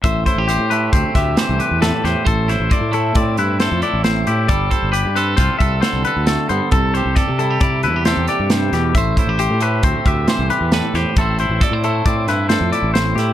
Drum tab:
HH |xxxxxxxxxx|xxxxxxxxxx|xxxxxxxxxx|xxxxxxxxxx|
SD |--o--oo-oo|-o----o-o-|----o-o-o-|--o---o-oo|
BD |oo--oo----|o-o-o-----|oo--oo----|o-o-o-----|

HH |xxxxxxxxxx|xxxxxxxxxx|
SD |------o-oo|--o--oo-oo|
BD |oo--oo----|o-o-o-----|